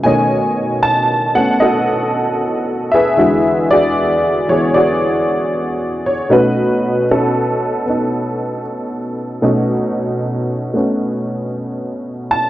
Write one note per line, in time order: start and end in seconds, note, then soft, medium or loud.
0.04 3.17 B2 soft
0.04 3.18 D#3 soft
0.04 1.33 A3 soft
0.04 1.36 C#4 soft
0.04 1.58 C#5 medium
0.04 1.58 D#5 medium
0.04 0.79 G#5 medium
0.83 1.38 A5 medium
1.35 3.17 A3 soft
1.35 3.17 B3 soft
1.35 3.18 C#4 soft
1.35 1.59 F#5 medium
1.60 3.14 F#4 medium
1.60 3.14 A4 medium
1.60 2.96 D#5 medium
2.92 3.71 G#4 medium
2.92 4.46 B4 medium
2.92 3.73 E5 medium
3.16 6.29 E2 soft
3.16 6.30 D3 soft
3.16 6.30 G#3 soft
3.16 3.71 F#4 medium
3.71 4.75 F#4 medium
3.71 4.50 G#4 medium
3.71 4.51 D5 medium
4.48 6.30 E3 soft
4.48 6.30 B3 soft
4.48 4.74 G#4 soft
4.48 4.75 C#5 medium
4.74 6.27 F#4 medium
4.74 6.27 G#4 medium
4.74 6.09 D5 medium
6.06 6.12 C#5 medium
6.29 9.40 B2 medium
6.29 9.41 A3 medium
6.29 7.09 C#4 soft
6.29 7.09 D#4 medium
6.29 7.83 F#4 medium
6.29 7.05 B4 medium
7.11 8.62 C#4 soft
7.11 7.88 D#4 soft
7.11 7.84 A4 medium
7.86 9.42 B3 soft
7.86 9.42 D#4 soft
9.42 12.50 B2 medium
9.42 10.72 A3 medium
9.42 10.75 C#4 medium
9.42 12.50 D#4 medium
10.74 12.50 A3 soft
10.74 12.50 B3 soft
10.74 12.50 C#4 soft
12.31 12.50 A5 medium